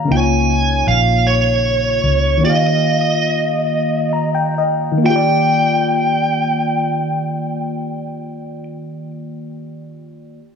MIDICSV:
0, 0, Header, 1, 4, 480
1, 0, Start_track
1, 0, Key_signature, -3, "major"
1, 0, Tempo, 775194
1, 59, Time_signature, 6, 3, 24, 8
1, 1500, Tempo, 845070
1, 2460, Tempo, 938967
1, 5753, End_track
2, 0, Start_track
2, 0, Title_t, "Lead electric guitar"
2, 0, Program_c, 0, 29
2, 73, Note_on_c, 0, 80, 127
2, 542, Note_off_c, 0, 80, 0
2, 545, Note_on_c, 0, 77, 107
2, 782, Note_off_c, 0, 77, 0
2, 785, Note_on_c, 0, 73, 104
2, 1511, Note_off_c, 0, 73, 0
2, 1514, Note_on_c, 0, 75, 108
2, 2677, Note_off_c, 0, 75, 0
2, 2944, Note_on_c, 0, 79, 100
2, 4772, Note_off_c, 0, 79, 0
2, 5753, End_track
3, 0, Start_track
3, 0, Title_t, "FM electric piano"
3, 0, Program_c, 1, 5
3, 0, Control_c, 1, 64, 127
3, 0, Note_on_c, 1, 77, 77
3, 0, Note_on_c, 1, 82, 73
3, 30, Note_on_c, 1, 49, 71
3, 48, Note_on_c, 1, 58, 65
3, 66, Note_on_c, 1, 63, 71
3, 68, Control_c, 1, 64, 0
3, 71, Note_off_c, 1, 77, 0
3, 71, Note_off_c, 1, 82, 0
3, 85, Note_on_c, 1, 65, 66
3, 105, Note_on_c, 1, 73, 78
3, 170, Control_c, 1, 64, 127
3, 1461, Note_off_c, 1, 49, 0
3, 1471, Note_off_c, 1, 58, 0
3, 1472, Note_on_c, 1, 51, 75
3, 1480, Note_off_c, 1, 63, 0
3, 1489, Note_off_c, 1, 65, 0
3, 1490, Note_on_c, 1, 58, 64
3, 1499, Note_off_c, 1, 73, 0
3, 1507, Control_c, 1, 64, 0
3, 1508, Note_on_c, 1, 65, 61
3, 1523, Note_on_c, 1, 67, 65
3, 1542, Note_on_c, 1, 77, 68
3, 1595, Control_c, 1, 64, 127
3, 2468, Note_on_c, 1, 82, 71
3, 2571, Note_off_c, 1, 82, 0
3, 2579, Note_on_c, 1, 79, 80
3, 2685, Note_off_c, 1, 79, 0
3, 2699, Note_on_c, 1, 75, 71
3, 2866, Note_off_c, 1, 51, 0
3, 2872, Note_on_c, 1, 51, 77
3, 2896, Note_off_c, 1, 58, 0
3, 2902, Note_on_c, 1, 58, 74
3, 2912, Note_off_c, 1, 65, 0
3, 2917, Note_off_c, 1, 75, 0
3, 2919, Note_off_c, 1, 67, 0
3, 2927, Note_off_c, 1, 77, 0
3, 2934, Note_on_c, 1, 65, 74
3, 2935, Control_c, 1, 64, 0
3, 2965, Note_on_c, 1, 67, 86
3, 2994, Note_on_c, 1, 74, 92
3, 3028, Control_c, 1, 64, 127
3, 5094, Note_off_c, 1, 51, 0
3, 5109, Note_off_c, 1, 58, 0
3, 5125, Note_off_c, 1, 65, 0
3, 5140, Note_off_c, 1, 67, 0
3, 5155, Note_off_c, 1, 74, 0
3, 5660, Control_c, 1, 64, 0
3, 5753, End_track
4, 0, Start_track
4, 0, Title_t, "Fingered electric bass"
4, 0, Program_c, 2, 33
4, 67, Note_on_c, 2, 37, 100
4, 509, Note_off_c, 2, 37, 0
4, 539, Note_on_c, 2, 34, 89
4, 1233, Note_off_c, 2, 34, 0
4, 1262, Note_on_c, 2, 37, 93
4, 1481, Note_off_c, 2, 37, 0
4, 5753, End_track
0, 0, End_of_file